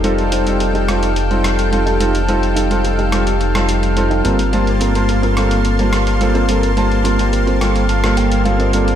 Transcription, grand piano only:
X:1
M:4/4
L:1/16
Q:1/4=107
K:Gm
V:1 name="Grand piano"
[G,CEFA]3 [G,CEFA]3 [G,CEFA] z2 [G,CEFA]3 [G,CEFA]2 [G,CEFA] z | [G,CEFA]3 [G,CEFA]3 [G,CEFA] z2 [G,CEFA]3 [G,CEFA]2 [G,B,CFA] z | [G,B,CFa]3 [G,B,CFa]3 [G,B,CFA] z2 [G,B,CFa]3 [G,B,CFA]2 [G,B,CFA] z | [G,B,CFa]3 [G,B,CFa]3 [G,B,CFA] z2 [G,B,CFA]3 [G,B,CFA]2 [G,B,CFA] z |]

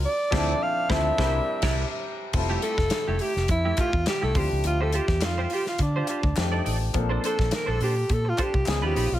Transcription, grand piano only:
X:1
M:4/4
L:1/8
Q:"Swing 16ths" 1/4=104
K:F
V:1 name="Grand piano"
z [F,CDEA] z [F,CDEA] [G,CDEB] z3 | [G,CEFA]6- [G,CEFA] [F,CDEG]- | [F,CDEG]6 [F,A,D_EG]2 | [F,B,CDA]6 [F,_C_D_E_A]2 |]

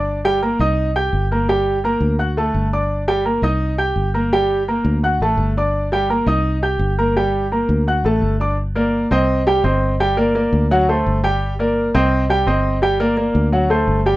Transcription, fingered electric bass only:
X:1
M:4/4
L:1/8
Q:1/4=169
K:Gm
V:1 name="Fingered electric bass" clef=bass
G,,,3 C,,3 G,,,2- | G,,,3 D,,3 G,,,2- | G,,,3 C,,3 G,,,2- | G,,,3 D,,2 A,,, G,,,2- |
G,,,3 C,,3 G,,,2- | G,,,3 D,,2 A,,, G,,,2- | G,,,3 C,,3 G,,,2- | G,,,3 D,,3 G,,,2- |
G,,,3 C,,3 G,,,2- | G,,,3 D,,3 G,,,2 |]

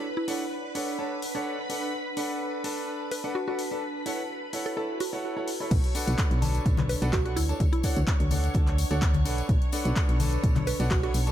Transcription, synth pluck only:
X:1
M:4/4
L:1/16
Q:"Swing 16ths" 1/4=127
K:Bm
V:1 name="Synth pluck"
z E3 z12 | z8 z2 B z F F z2 | z6 z A A z F3 z3 | z8 z2 B z F F E z |
z E3 z12 | z8 z2 B z F F z2 |]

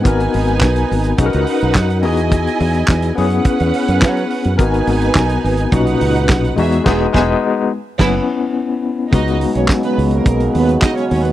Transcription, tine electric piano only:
X:1
M:4/4
L:1/8
Q:1/4=106
K:C#dor
V:1 name="Tine electric piano"
[B,DFA]4 [CDFGA]3 [B,DFG]- | [B,DFG]3 [B,CEG]4- [B,CEG] | [B,DFA]4 [A,,CDF]3 [G,B,DF] | [G,B,D] [G,B,D] z2 [B,CE] z3 |
[G,B,DF]8 |]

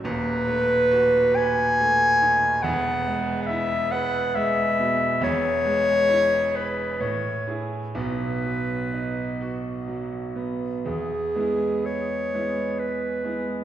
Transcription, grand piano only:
X:1
M:3/4
L:1/8
Q:1/4=67
K:E
V:1 name="Grand piano" clef=bass
[D,,,D,,] A, F B A, D, | [E,,,E,,] G, E B G, B,, | [E,,,E,,] G, E B A,, [EG] | [B,,,B,,] F, D F F, B, |
E,, [G,B,E]2 [G,B,E]2 [G,B,E] |]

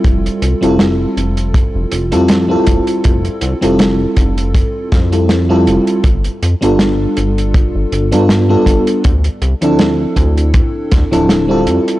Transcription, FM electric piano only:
X:1
M:4/4
L:1/16
Q:"Swing 16ths" 1/4=80
K:Flyd
V:1 name="FM electric piano"
[G,CEFA]3 [G,CEFA]8 [G,CEFA]2 [G,CEFA]3- | [G,CEFA]3 [G,CEFA]8 [G,CEFA]2 [G,CEFA]3 | z3 [G,B,DFA]8 [G,B,DFA]2 [G,B,DFA]3 | z3 [F,CDEA]8 [F,CDEA]2 [G,CEFA]3 |]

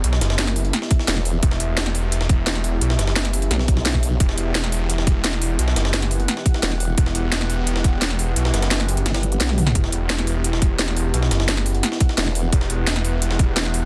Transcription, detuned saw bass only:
X:1
M:4/4
L:1/8
Q:1/4=173
K:Em
V:1 name="Detuned saw bass" clef=bass
B,,, F,,,3 z4 | E,,,4- E,,, E,,,3 | B,,, F,,,3 z4 | E,,,4- E,,, E,,,3 |
B,,, F,,,3 z4 | E,,,4- E,,, E,,,3 | B,,, F,,,3 z4 | E,,,4- E,,, E,,,3 |
B,,, F,,,3 z4 | E,,,4- E,,, E,,,3 |]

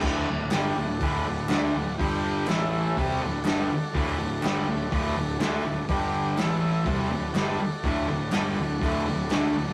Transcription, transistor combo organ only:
X:1
M:4/4
L:1/8
Q:1/4=123
K:Dmix
V:1 name="Transistor combo organ"
[Adf]8 | [Gdg]2 [EAe]2 [FAd]4- | [FAd]8 | [DGd]2 [EAe]2 [FAd]4- |
[FAd]8 |]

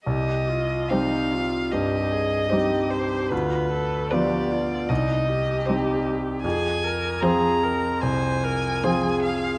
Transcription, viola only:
X:1
M:4/4
L:1/8
Q:1/4=75
K:Cm
V:1 name="Viola"
G F E F G A G2 | F =A G F E G3 | A B A B c B A2 |]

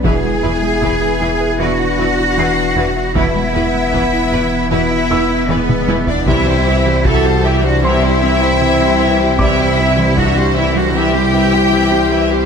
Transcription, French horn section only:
X:1
M:4/4
L:1/16
Q:1/4=77
K:Em
V:1 name="French horn section"
E8 D8 | B,8 B,4 ^G,3 B, | C4 F2 E D C8 | C4 D2 C D E8 |]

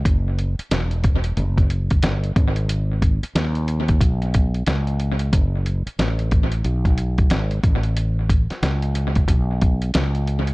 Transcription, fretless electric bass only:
X:1
M:4/4
L:1/16
Q:"Swing 16ths" 1/4=91
K:Alyd
V:1 name="Fretless electric bass" clef=bass
F,,,3 z E,,,4 F,,,4 =G,,,2 ^G,,,2- | G,,,3 z D,,4 B,,,4 C,,4 | F,,,3 z A,,,4 B,,,4 G,,,2 A,,,2- | A,,,3 z C,,4 B,,,4 C,,4 |]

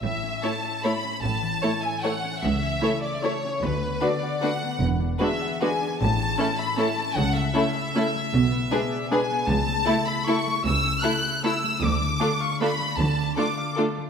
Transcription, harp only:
X:1
M:3/4
L:1/8
Q:1/4=152
K:A
V:1 name="Harp"
A,, C A e A C | A,, E, A e A C | C, C A e A C | D, B, A f A B, |
E, D G f G D | A,, C A e A C | C, A, A e A A, | B,, B, G d G B, |
C, A, A e A A, | C, C A e A A, | D, A, A =f A A, | D, D A =f A A, |]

